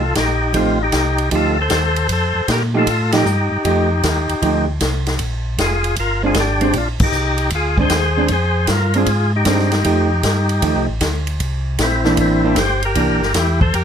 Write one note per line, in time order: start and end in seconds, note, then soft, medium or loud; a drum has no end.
0.00 0.14 C2 medium
0.00 0.14 F4 medium
0.00 0.15 A4 medium
0.15 0.53 A#1 loud
0.15 0.53 D#4 medium
0.15 0.57 G4 medium
0.15 kick soft
0.15 snare medium
0.15 hi-hat pedal medium
0.15 ride medium
0.54 0.92 A1 medium
0.54 0.77 F3 medium
0.54 0.77 A3 medium
0.54 0.79 C4 medium
0.54 0.78 D#4 medium
0.54 0.82 F4 medium
0.54 0.78 G4 medium
0.54 kick soft
0.54 ride medium
0.83 1.29 D#4 medium
0.83 1.30 G4 loud
0.92 1.30 C2 medium
0.92 kick soft
0.92 snare medium
0.92 hi-hat pedal medium
0.92 ride medium
1.18 ride soft
1.31 1.69 D2 medium
1.31 1.55 F3 medium
1.31 1.55 A3 medium
1.31 1.55 D#4 medium
1.31 1.55 G4 medium
1.31 kick soft
1.31 ride medium
1.35 1.58 F4 medium
1.35 1.60 A4 medium
1.61 2.07 A4 medium
1.61 2.12 C5 loud
1.70 2.08 D#2 medium
1.70 kick soft
1.70 snare medium
1.70 hi-hat pedal medium
1.70 ride medium
1.96 ride soft
2.09 2.33 F2 medium
2.09 2.47 A4 medium
2.09 kick soft
2.09 ride medium
2.13 2.51 C5 loud
2.35 2.42 F2 soft
2.48 2.86 A#2 medium
2.48 2.62 G4 medium
2.48 kick soft
2.48 snare medium
2.48 hi-hat pedal medium
2.48 ride medium
2.52 2.63 A#4 medium
2.74 2.86 F3 medium
2.74 2.86 A3 medium
2.74 2.86 D#4 medium
2.74 3.12 F4 medium
2.74 2.86 G4 medium
2.79 3.12 A4 medium
2.86 3.24 A2 medium
2.86 kick soft
2.86 ride medium
3.12 3.25 F3 medium
3.12 3.25 A3 medium
3.12 3.25 D#4 medium
3.12 4.65 D#4 medium
3.12 3.25 G4 medium
3.12 snare medium
3.12 ride medium
3.17 4.66 G4 medium
3.25 3.49 G2 loud
3.25 hi-hat pedal medium
3.51 3.58 G2 soft
3.64 4.02 F2 medium
3.64 3.88 F3 medium
3.64 3.88 A3 medium
3.64 3.88 D#4 medium
3.64 3.88 G4 medium
3.64 kick soft
3.64 ride medium
4.03 4.27 D#2 medium
4.03 kick soft
4.03 snare medium
4.03 hi-hat pedal medium
4.03 ride medium
4.29 4.35 D#2 soft
4.29 ride soft
4.42 4.79 D2 medium
4.42 4.65 F3 medium
4.42 4.66 A3 medium
4.42 4.66 D#4 medium
4.42 4.66 G4 medium
4.42 kick soft
4.42 ride medium
4.80 5.18 C2 medium
4.80 kick soft
4.80 snare medium
4.80 hi-hat pedal medium
4.80 ride medium
5.06 snare medium
5.06 ride soft
5.19 5.57 A#1 medium
5.19 kick soft
5.19 ride medium
5.58 5.96 F1 medium
5.58 5.96 F4 medium
5.58 5.96 G#4 medium
5.58 kick soft
5.58 snare medium
5.58 hi-hat pedal medium
5.58 ride medium
5.84 ride medium
5.96 6.35 G1 medium
5.96 6.22 F4 medium
5.96 6.23 A#4 medium
5.96 kick soft
5.96 ride medium
6.23 6.35 G#3 medium
6.23 6.35 C4 medium
6.23 6.35 D4 medium
6.23 6.37 F4 medium
6.23 6.38 G#4 medium
6.34 6.73 G#1 loud
6.34 kick soft
6.34 snare medium
6.34 hi-hat pedal medium
6.34 ride medium
6.40 6.74 D4 medium
6.40 6.78 G4 medium
6.61 6.73 G#3 medium
6.61 6.73 C4 medium
6.61 6.73 D4 medium
6.61 ride soft
6.73 6.98 A#1 medium
6.73 6.88 D4 medium
6.73 kick soft
6.73 ride medium
6.78 6.89 F4 medium
7.00 7.06 A#1 soft
7.00 7.50 D#4 medium
7.00 kick medium
7.00 crash medium
7.04 7.50 G4 loud
7.12 7.50 C2 medium
7.12 hi-hat pedal medium
7.38 ride soft
7.50 7.90 D2 medium
7.50 kick soft
7.50 ride medium
7.55 7.78 F4 medium
7.55 7.78 G#4 medium
7.78 7.90 G#3 medium
7.78 7.90 C4 medium
7.78 7.90 D4 medium
7.78 8.28 G#4 medium
7.78 kick soft
7.82 8.32 C5 loud
7.90 8.28 D#2 loud
7.90 kick soft
7.90 snare medium
7.90 hi-hat pedal medium
7.90 ride medium
8.17 8.28 G#3 medium
8.17 8.29 C4 medium
8.17 8.29 D4 medium
8.28 8.67 F2 medium
8.28 8.67 G#4 medium
8.28 kick soft
8.28 ride medium
8.33 8.72 C5 loud
8.67 9.06 G2 medium
8.67 8.94 F4 medium
8.67 kick soft
8.67 snare medium
8.67 hi-hat pedal medium
8.67 ride medium
8.72 8.97 A#4 medium
8.94 9.07 G#3 medium
8.94 9.07 C4 medium
8.94 9.07 D4 medium
8.94 9.32 F4 medium
8.94 9.32 G#4 medium
8.94 ride medium
9.06 9.45 G#2 medium
9.06 kick soft
9.06 ride medium
9.36 10.86 D#4 medium
9.36 10.87 G4 medium
9.45 9.84 G2 medium
9.45 9.69 G#3 medium
9.45 9.70 C4 medium
9.45 9.70 D4 medium
9.45 kick soft
9.45 snare medium
9.45 hi-hat pedal medium
9.45 ride medium
9.59 snare soft
9.72 snare soft
9.72 ride soft
9.84 10.23 F2 medium
9.84 10.08 F3 medium
9.84 10.08 A3 medium
9.84 10.09 D#4 medium
9.84 10.09 G4 medium
9.84 kick soft
9.84 ride medium
10.23 10.61 G2 medium
10.23 kick soft
10.23 snare medium
10.23 hi-hat pedal soft
10.23 ride medium
10.49 ride soft
10.62 10.75 D#2 medium
10.62 10.86 F3 medium
10.62 10.86 A3 medium
10.62 10.86 D#4 medium
10.62 10.87 G4 medium
10.62 kick soft
10.62 ride medium
10.76 10.89 C2 medium
10.88 11.01 A1 medium
11.01 11.39 D2 loud
11.01 kick soft
11.01 snare medium
11.01 hi-hat pedal medium
11.01 ride medium
11.27 ride soft
11.40 11.78 C2 medium
11.40 kick soft
11.40 ride medium
11.78 12.17 A#1 medium
11.78 12.19 E4 medium
11.78 kick soft
11.78 snare medium
11.78 hi-hat pedal medium
11.78 ride medium
11.84 12.18 C4 medium
12.04 12.41 E3 medium
12.04 12.42 A#3 medium
12.04 12.42 D4 medium
12.04 snare medium
12.17 12.56 A1 medium
12.17 12.60 E4 medium
12.17 kick soft
12.17 ride medium
12.21 12.56 C4 medium
12.44 12.56 E3 medium
12.44 12.56 A#3 medium
12.44 12.56 D4 medium
12.56 12.95 G1 loud
12.56 12.82 G4 medium
12.56 12.85 C5 loud
12.56 kick soft
12.56 snare medium
12.56 hi-hat pedal medium
12.56 ride medium
12.82 13.33 G4 medium
12.82 13.38 A#4 loud
12.82 ride soft
12.95 13.09 C2 medium
12.95 13.19 E3 medium
12.95 13.20 A#3 medium
12.95 13.20 D4 medium
12.95 kick soft
12.95 ride medium
13.08 13.22 A#1 medium
13.21 13.34 G1 medium
13.21 snare soft
13.34 13.73 E2 medium
13.34 13.60 E4 medium
13.34 13.60 G4 medium
13.34 kick soft
13.34 snare medium
13.34 hi-hat pedal medium
13.34 ride medium
13.61 13.74 A4 medium
13.61 13.75 C5 loud
13.61 kick medium
13.74 13.84 F2 medium
13.74 13.84 G4 medium
13.74 13.84 A#4 medium
13.74 kick soft
13.74 ride medium